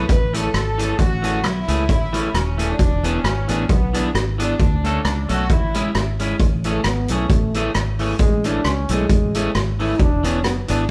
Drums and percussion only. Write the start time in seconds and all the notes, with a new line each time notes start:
0.09 kick, closed hi-hat
0.34 closed hi-hat
0.54 cross-stick, closed hi-hat
0.79 closed hi-hat
0.99 kick, closed hi-hat
1.24 closed hi-hat
1.44 cross-stick, closed hi-hat
1.68 closed hi-hat
1.89 kick, closed hi-hat
2.14 closed hi-hat
2.35 cross-stick, closed hi-hat
2.59 closed hi-hat
2.79 kick, closed hi-hat
3.04 closed hi-hat
3.24 cross-stick, closed hi-hat
3.48 closed hi-hat
3.69 kick, closed hi-hat
3.94 closed hi-hat
4.15 cross-stick, closed hi-hat
4.39 closed hi-hat
4.59 kick, closed hi-hat
4.84 closed hi-hat
5.05 cross-stick, closed hi-hat
5.29 closed hi-hat
5.49 kick, closed hi-hat
5.74 closed hi-hat
5.95 cross-stick, closed hi-hat
6.19 closed hi-hat
6.39 kick, closed hi-hat
6.64 closed hi-hat
6.84 cross-stick, closed hi-hat
7.08 closed hi-hat
7.30 kick, closed hi-hat
7.54 closed hi-hat
7.75 cross-stick, closed hi-hat
7.99 open hi-hat
8.19 kick, closed hi-hat
8.44 closed hi-hat
8.64 cross-stick, closed hi-hat
8.89 closed hi-hat
9.09 kick, closed hi-hat
9.34 closed hi-hat
9.55 cross-stick, closed hi-hat
9.79 open hi-hat
9.99 kick, closed hi-hat
10.24 closed hi-hat
10.44 cross-stick, closed hi-hat
10.68 closed hi-hat